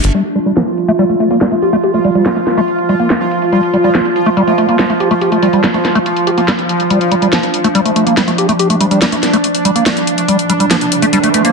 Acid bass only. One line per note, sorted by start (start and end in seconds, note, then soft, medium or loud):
0.14 0.23 G3 medium
0.36 0.39 G3 medium
0.46 0.52 G3 medium
0.57 0.62 F3 medium
0.88 0.92 A3 loud
0.99 1.05 G3 loud
1.09 1.15 A3 medium
1.20 1.29 A3 medium
1.31 1.39 A#3 medium
1.41 1.47 G3 medium
1.52 1.55 A3 medium
1.62 1.71 G4 medium
1.73 1.76 A3 loud
1.83 1.92 G4 medium
1.94 2.00 A3 medium
2.05 2.10 G3 medium
2.15 2.24 G3 medium
2.26 2.29 G3 loud
2.36 2.40 A3 medium
2.57 2.61 A3 loud
2.89 2.95 G3 medium
3.00 3.08 A#3 medium
3.10 3.14 A3 loud
3.52 3.61 G3 medium
3.74 3.77 G3 medium
3.84 3.90 G3 medium
3.95 4.00 F3 medium
4.26 4.30 A3 loud
4.37 4.43 G3 medium
4.47 4.53 A3 medium
4.58 4.67 A3 medium
4.69 4.77 A#3 medium
4.79 4.85 G3 medium
4.90 4.93 A3 medium
5.00 5.09 G4 medium
5.11 5.14 A3 loud
5.21 5.30 G4 medium
5.32 5.38 A3 medium
5.43 5.48 G3 medium
5.53 5.62 G3 medium
5.64 5.67 G3 loud
5.74 5.78 A3 medium
5.95 5.99 A3 loud
6.27 6.30 G4 medium
6.38 6.41 A#3 medium
6.48 6.52 G3 loud
6.90 6.99 G3 medium
7.12 7.15 G3 medium
7.22 7.28 G3 medium
7.33 7.38 F3 medium
7.64 7.68 A3 loud
7.75 7.81 G3 loud
7.85 7.91 A3 medium
7.96 8.05 A3 medium
8.07 8.15 A#3 medium
8.17 8.23 G3 medium
8.28 8.31 A3 medium
8.38 8.47 G4 medium
8.49 8.52 A3 loud
8.59 8.68 G4 medium
8.70 8.76 A3 medium
8.81 8.86 G3 medium
8.91 9.00 G3 medium
9.02 9.05 G3 loud
9.12 9.16 A3 medium
9.33 9.37 A3 loud
9.65 9.71 G3 medium
9.76 9.84 A#3 medium
9.86 9.90 A3 loud
10.28 10.37 G3 medium
10.50 10.53 G3 medium
10.60 10.66 G3 medium
10.71 10.76 F3 medium
11.02 11.06 A3 loud
11.13 11.19 G3 medium
11.24 11.29 A3 medium
11.34 11.43 A3 medium
11.45 11.52 A#3 medium